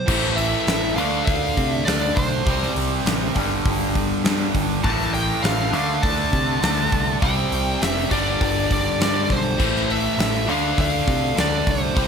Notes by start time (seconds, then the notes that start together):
Already playing: C5
0.06 A1 A2 E3 A3, kick, crash
0.24 snare
0.36 E5, open hi-hat
0.67 A1, snare, open hi-hat
0.95 D2 D3 A3 D4 F5, open hi-hat
1.26 D2 F5, kick, open hi-hat
1.57 C3, kick, open hi-hat
1.70 E5
1.85 D2 D3 A3 D5, snare, open hi-hat
1.89 D4
2.15 B1 C5, kick, open hi-hat
2.44 C2 C3 G3 C4, kick, open hi-hat
2.63 snare
2.76 C2, open hi-hat
3.06 A1, snare, open hi-hat
3.34 G1 G2 D3 G3, kick, open hi-hat
3.65 G1, kick, open hi-hat
3.95 kick, open hi-hat
4.23 G2 D3, snare, open hi-hat
4.27 G3
4.54 G1, kick, open hi-hat
4.82 A1 A2 E3 A3 A5, kick, open hi-hat
5.01 snare
5.14 G5, open hi-hat
5.43 A1 F5, snare, open hi-hat
5.71 D2 D3 A3 D4, open hi-hat
6.02 D2 A5, kick, open hi-hat
6.33 C3, kick, open hi-hat
6.61 D2 D3 A3 D4, snare, open hi-hat
6.92 C2, kick, open hi-hat
7.21 C2 C3 G3 C4 G5, kick, open hi-hat
7.52 C2, open hi-hat
7.82 F1 E5, snare, open hi-hat
8.09 G1 G2 D3 D5, kick, open hi-hat
8.13 G3
8.41 G1, kick, open hi-hat
8.71 D5, kick, open hi-hat
8.98 G2 D3 D5, snare, open hi-hat
9.03 G3
9.30 B1 C5, kick, open hi-hat
9.58 A1 A2 E3 A3, kick, crash
9.76 snare
9.90 E5, open hi-hat
10.18 A1, snare, open hi-hat
10.46 D2 D3 A3, open hi-hat
10.50 D4 F5
10.78 D2 F5, kick, open hi-hat
11.08 C3, kick, open hi-hat
11.35 D2 D3 A3, snare, open hi-hat
11.40 D4 D5
11.67 C2 C5, kick, open hi-hat
11.94 C2 C3 G3, kick, open hi-hat
11.99 C4